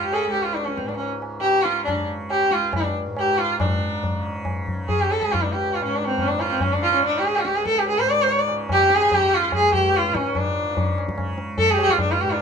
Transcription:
Already playing: tanpura C#2 G#2 C#3
0.01 sarangi G4
0.12 sarangi G#4 A4, tabla na
0.18 sarangi G#4
0.23 tanpura C#2, sarangi A4
0.31 sarangi G4, tabla na
0.43 sarangi F4
0.54 sarangi D4, tabla te
0.65 sarangi C#4, tabla te
0.77 sarangi C4, tabla ke
0.84 tanpura G#2, sarangi D4
0.89 tabla te
0.96 sarangi C#4, tabla tin
1.22 tabla na
1.40 tanpura C#3, sarangi G4, tabla na
1.63 sarangi F4, tabla te
1.85 sarangi D4, tabla na, tabla ge
1.95 tanpura C#3
2.30 sarangi G4, tabla na
2.51 tanpura C#2, sarangi F4, tabla te
2.73 sarangi D4, tabla na, tabla ge
3.06 tanpura G#2
3.17 sarangi G4, tabla na
3.38 sarangi F4, tabla te
3.60 tanpura G#2, sarangi D4, tabla na, tabla ge
4.03 tabla tin, tabla ge
4.15 tanpura C#3
4.45 tabla na, tabla ge
4.67 tanpura C#3, tabla ge
4.89 sarangi G#4, tabla tin, tabla ge
5.01 sarangi G4
5.11 sarangi A4, tabla na
5.21 tanpura C#2, sarangi G#4, tabla ke
5.32 sarangi F4, tabla tin, tabla ge
5.43 sarangi D4
5.52 sarangi G4
5.74 sarangi F4, tabla na
5.80 tanpura G#2
5.85 sarangi C#4
5.96 sarangi D4
6.04 sarangi C4 C#4
6.18 sarangi C#4, tabla tin, tabla ge
6.28 sarangi D4
6.34 tanpura C#3
6.39 sarangi F4, tabla na
6.50 sarangi C4
6.60 sarangi C#4, tabla tin, tabla ge
6.73 sarangi D4
6.82 sarangi F4, tabla na
6.91 tanpura C#3, sarangi C#4
7.03 sarangi D4, tabla te
7.16 sarangi G4
7.23 sarangi G#4, tabla te
7.37 sarangi F4
7.44 tanpura C#2, sarangi G4, tabla te
7.55 sarangi G#4, tabla te
7.66 sarangi A4, tabla ke
7.76 sarangi G4, tabla te
7.86 sarangi G#4, tabla tin
7.97 tanpura G#2, sarangi C5
8.07 sarangi D5, tabla na
8.22 sarangi C5
8.27 sarangi C#5, tabla tin
8.39 sarangi D5
8.48 tanpura C#3, tabla na
8.69 sarangi G4, tabla na, tabla ge
8.90 tabla te
8.96 sarangi G#4
9.02 tanpura C#3
9.11 sarangi G4, tabla tin, tabla ge
9.34 sarangi F4
9.52 sarangi G#4, tabla na, tabla ge
9.56 tanpura C#2
9.73 sarangi G4, tabla ge
9.94 sarangi F4, tabla te
10.04 tabla te
10.09 tanpura G#2
10.15 sarangi C#4, tabla ke
10.26 tabla te
10.35 sarangi D4, tabla na, tabla ge
10.64 tanpura C#3
10.77 tabla tin, tabla ge
10.98 tabla na
11.09 tabla ke
11.15 tanpura C#3, tabla na, tabla ge
11.38 tabla te
11.58 sarangi A4, tabla tin, tabla ge
11.67 tanpura C#2, sarangi G#4
11.73 sarangi G4 G#4
11.78 sarangi G4, tabla na
11.88 sarangi F4, tabla ke
11.98 sarangi D4, tabla tin, tabla ge
12.11 sarangi F4
12.21 tanpura G#2, sarangi G4
12.29 sarangi D4 F4

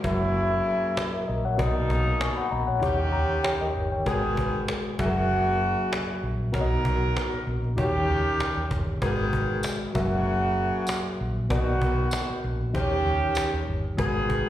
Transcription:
0.03 fingered electric bass F#1, horn section C#3 A#3 E4, reed electric piano F#3 F#4 A#4 E5, cajon bass
0.34 cajon slap
0.67 cajon slap
0.97 cajon slap
1.14 reed electric piano A#4 E5
1.28 fingered electric bass A#1, reed electric piano A#4 D#5
1.45 reed electric piano C#5 F#5
1.57 fingered electric bass B1, horn section B2 A#3 D#4, reed electric piano B3 F#4 A#4 D5, cajon bass
1.66 reed electric piano D#5
1.90 cajon bass
2.21 reed electric piano G#5 C#6, cajon slap
2.36 reed electric piano F#5 B5, muted fingered electric bass stroke
2.51 fingered electric bass A#1, reed electric piano D#5 A#5, cajon slap
2.67 reed electric piano C#5 F#5
2.81 fingered electric bass D#2, reed electric piano D#3 D#4 G4 C#5, horn section D#3 C#4 G4, cajon bass
3.12 fingered electric bass C#2, reed electric piano A#5, cajon slap
3.44 reed electric piano G4 C#5 G5, cajon slap
3.61 fingered electric bass D#2, reed electric piano A#4 D#5
3.76 fingered electric bass G1
3.92 reed electric piano C#5 G5
4.05 fingered electric bass G#1, horn section D#3 B3 G#4, reed electric piano G#3 F#4 A#4 B4, cajon bass
4.37 cajon bass
4.54 muted fingered electric bass stroke
4.68 cajon slap
4.98 fingered electric bass F#1, horn section C#3 A#3 F#4, reed electric piano F#3 F#4 G#4 E5, cajon bass
5.06 reed electric piano A#4
5.29 cajon slap
5.62 cajon slap
5.93 cajon slap
6.23 fingered electric bass A#1
6.52 fingered electric bass B1, horn section F#3 D#4 A#4, reed electric piano B3 F#4 A#4 C#5, cajon bass
6.61 reed electric piano D#5
6.85 cajon bass
7.17 cajon slap
7.34 muted fingered electric bass stroke
7.47 fingered electric bass A#1, cajon slap
7.64 cajon slap
7.76 fingered electric bass D#2, reed electric piano D#3 D#4 F#4 C#5, horn section D#3 C#4 G4, cajon bass
7.84 reed electric piano G4
8.10 fingered electric bass C#2, cajon slap
8.40 cajon slap
8.57 fingered electric bass D#2
8.71 fingered electric bass G1, cajon bass, cajon slap
9.02 fingered electric bass G#1, horn section D#3 B3 G#4, reed electric piano G#3 F#4 A#4 B4, cajon bass
9.33 cajon bass
9.50 muted fingered electric bass stroke
9.63 cajon slap, tambourine
9.93 fingered electric bass F#1, horn section C#3 A#3 F#4, reed electric piano F#3 F#4 A#4 E5, cajon bass
10.25 cajon slap
10.58 cajon slap
10.87 cajon slap, tambourine
11.21 fingered electric bass A#1
11.49 fingered electric bass B1, horn section D#3 B3 F#4, reed electric piano B3 F#4 A#4 D5, cajon bass
11.58 reed electric piano D#5
11.82 cajon bass
12.11 cajon slap, tambourine
12.30 muted fingered electric bass stroke
12.44 fingered electric bass A#1, cajon slap
12.73 fingered electric bass D#2, reed electric piano D#3 D#4 G4 C5, horn section D#3 C#4 G4, cajon bass
12.82 reed electric piano C#5
13.06 fingered electric bass C#2, cajon slap
13.35 cajon slap, tambourine
13.54 fingered electric bass D#2
13.68 fingered electric bass G1
13.97 fingered electric bass G#1, horn section D#3 B3 G#4, reed electric piano G#3 F#4 A#4 B4, cajon bass
14.30 cajon bass

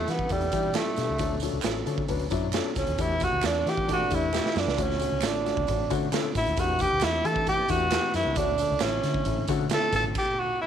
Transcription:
Already playing: tenor saxophone A3
0.08 fingered electric bass E3, upright piano G3 D4 E4 B4, tenor saxophone B3, snare, closed hi-hat, tambourine
0.19 kick
0.29 fingered electric bass E2, upright piano G3 D4 E4 A4, tenor saxophone G3, kick, closed hi-hat, tambourine
0.41 closed hi-hat
0.52 fingered electric bass E3, upright piano G3 D4 E4 G4, kick, closed hi-hat, tambourine
0.74 upright piano G3 D4 E4 A4, tenor saxophone A3, snare, clap, closed hi-hat, tambourine
0.96 fingered electric bass B2, upright piano G3 D4 E4 A4, snare, closed hi-hat, tambourine
1.09 fingered electric bass C#2
1.18 fingered electric bass D2, upright piano F#3 C#4 D4 A4, kick, closed hi-hat, tambourine
1.40 upright piano F#3 C#4 D4 A4, closed hi-hat, tambourine
1.53 fingered electric bass C#2
1.62 fingered electric bass A1, upright piano F#3 C#4 D4 A4, snare, clap, closed hi-hat, tambourine
1.86 fingered electric bass D3, upright piano F#3 C#4 D4 A4, closed hi-hat, tambourine
1.98 kick
2.08 fingered electric bass D2, upright piano F#3 C#4 D4 B4, kick, closed hi-hat
2.19 closed hi-hat
2.30 fingered electric bass F#2, upright piano F#3 C#4 D4 E4, kick, closed hi-hat, tambourine
2.53 upright piano F#3 C#4 D4 A4, snare, clap, closed hi-hat, tambourine
2.75 fingered electric bass C#2, upright piano F#3 C#4 D4 A4, tenor saxophone C#4, kick, snare, closed hi-hat, tambourine
2.87 fingered electric bass D#2, closed hi-hat
2.98 fingered electric bass E2, upright piano E3 A3 D4 G4, tenor saxophone E4, kick, closed hi-hat, tambourine
3.20 upright piano E3 A3 D4 G4, tenor saxophone F#4, kick, closed hi-hat, tambourine
3.33 fingered electric bass D2
3.43 fingered electric bass E2, upright piano E3 A3 D4 F#4, tenor saxophone D4, snare, clap, closed hi-hat, tambourine
3.65 upright piano E3 A3 D4 G4, fingered electric bass E3, tenor saxophone G4, snare, closed hi-hat, tambourine
3.77 kick
3.87 upright piano E3 A3 D4 G4, horn section A3 D4 G4 D5, kick, closed hi-hat, tambourine
3.92 tenor saxophone F#4
4.10 fingered electric bass E2, upright piano E3 A3 D4 G4, kick, closed hi-hat, tambourine
4.14 tenor saxophone E4
4.33 upright piano E3 A3 D4 G4, snare, clap, tambourine
4.46 snare
4.55 fingered electric bass F#2, upright piano E3 A3 D4 A4, tenor saxophone D4, snare, tambourine
4.67 fingered electric bass C#2, snare
4.77 fingered electric bass D2, upright piano D3 A3 C#4 F#4, kick, closed hi-hat, tambourine
4.83 tenor saxophone C#4
4.91 snare
4.99 upright piano D3 A3 C#4 F#4, closed hi-hat, tambourine
5.12 fingered electric bass C#2
5.22 fingered electric bass A1, upright piano D3 A3 C#4 A4, snare, clap, closed hi-hat, tambourine
5.27 tenor saxophone D4
5.45 upright piano D3 A3 C#4 F#4, snare, closed hi-hat
5.57 fingered electric bass C#2, kick
5.67 fingered electric bass A1, upright piano D3 A3 C#4 F#4, kick, closed hi-hat, tambourine
5.90 upright piano D3 A3 C#4 F#4, fingered electric bass D3, kick, closed hi-hat, tambourine
6.12 upright piano D3 A3 C#4 A4, snare, clap, closed hi-hat, tambourine
6.35 fingered electric bass A2, upright piano D3 A3 C#4 F#4, tenor saxophone E4, kick, closed hi-hat, tambourine
6.46 fingered electric bass D#2, closed hi-hat
6.57 fingered electric bass E2, upright piano E3 A3 D4 G4, tenor saxophone F#4, kick, closed hi-hat, tambourine
6.79 upright piano E3 A3 D4 G4, tenor saxophone G4, kick, closed hi-hat, tambourine
6.91 fingered electric bass D2
7.01 fingered electric bass E2, upright piano E3 A3 D4 G4, tenor saxophone E4, snare, clap, closed hi-hat, tambourine
7.24 upright piano E3 A3 D4 G4, fingered electric bass E3, tenor saxophone A4, closed hi-hat, tambourine
7.36 kick
7.47 upright piano E3 A3 D4 G4, tenor saxophone G4, kick, closed hi-hat
7.68 fingered electric bass E2, upright piano E3 A3 D4 G4, tenor saxophone F#4, kick, closed hi-hat, tambourine
7.91 upright piano E3 A3 D4 G4, snare, clap, closed hi-hat, tambourine
8.14 fingered electric bass F#2, upright piano E3 A3 D4 G4, tenor saxophone E4, snare, closed hi-hat, tambourine
8.25 fingered electric bass C#2
8.35 fingered electric bass D2, upright piano D3 A3 C#4 F#4, tenor saxophone D4, kick, closed hi-hat, tambourine
8.58 upright piano D3 A3 C#4 A4, closed hi-hat, tambourine
8.70 fingered electric bass C#2
8.80 fingered electric bass A1, upright piano D3 A3 C#4 E4, tenor saxophone C#4, snare, clap, closed hi-hat, tambourine
9.03 fingered electric bass D3, upright piano D3 A3 C#4 E4, snare, closed hi-hat, tambourine
9.14 kick
9.25 fingered electric bass A1, upright piano D3 A3 C#4 E4, kick, closed hi-hat, tambourine
9.47 fingered electric bass D3, upright piano D3 A3 C#4 F#4, kick, closed hi-hat, tambourine
9.69 upright piano D3 A3 C#4 E4, tenor saxophone A4, snare, clap, closed hi-hat, tambourine
9.93 fingered electric bass A2, upright piano D3 A3 C#4 A4, tenor saxophone A4, kick, snare, closed hi-hat, tambourine
10.04 fingered electric bass G#1
10.15 tenor saxophone G4, kick, crash
10.40 tenor saxophone F#4
10.62 tenor saxophone E4

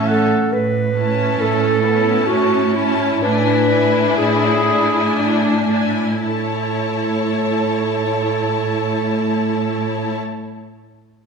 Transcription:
Already playing: double bass section A1, cello section A2, viola section C#4, bassoon E4, violin section E5 A5, flute A5
0.07 clarinet A4, oboe F#5
0.53 cello section A2, clarinet B4
0.96 viola section C#4 E4, violin section A5
1.40 cello section A2, violin section A3, clarinet A4
1.84 violin section B3 A5, viola section C#4 E4
2.27 cello section A2, violin section C#4, clarinet F#4
2.74 viola section C#4 E4, clarinet E4, violin section A5
3.22 cello section A2, viola section D4 E4, violin section D4 G#5, clarinet B4
3.71 viola section D4 E4, violin section E4 G#5
4.17 cello section A2, clarinet G#4
4.64 viola section D4 E4, violin section G#5
5.16 cello section A2, violin section D4
5.71 viola section D4 E4, violin section G#5
6.25 cello section A2, viola section E4, clarinet A4, violin section C#5 A5

